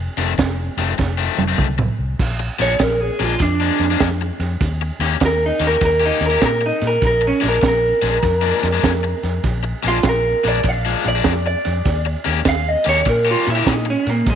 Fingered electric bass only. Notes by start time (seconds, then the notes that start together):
0.18 F1
0.39 F1
0.77 F1
0.98 F1
1.38 F1
1.59 C2
1.99 C2
2.19 A#1
2.60 A#1
2.80 A#1
3.20 A#1
3.40 F2
3.80 F2
4.01 F2
4.40 F2
4.61 D#2
4.99 D#2
5.21 D#2
5.60 D#2
5.81 D#2
6.21 D#2
6.41 A#2
6.82 A#2
7.02 A#1
7.43 A#1
7.63 A#1
8.02 A#1
8.22 F2
8.63 F2
8.84 F2
9.23 F2
9.43 A#1
9.84 A#1
10.04 A#1
10.45 A#1
10.64 A#1
11.06 A#1
11.25 F2
11.66 F2
11.86 D#2
12.26 D#2
12.45 D#2
12.87 D#2
13.06 A#2
13.48 A#2
13.66 A#2
14.07 A#2
14.26 A#1